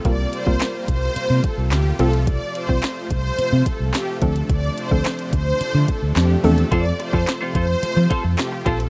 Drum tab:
HH |x-x-x-x-x-x-x-xx|x-x-x-x-x-x-x-xx|x-x-xxx-x-x-x-ox|x-x-x-x-x-x-x-xx|
CP |----x-------x---|----x-------x---|----x-------x---|----x-------x---|
SD |----o-------o---|----o-------o---|----o-------o---|----o-------o---|
BD |o--o--o---o-----|o--o--o---o---o-|o--o--o---o-----|o--o--o---o---o-|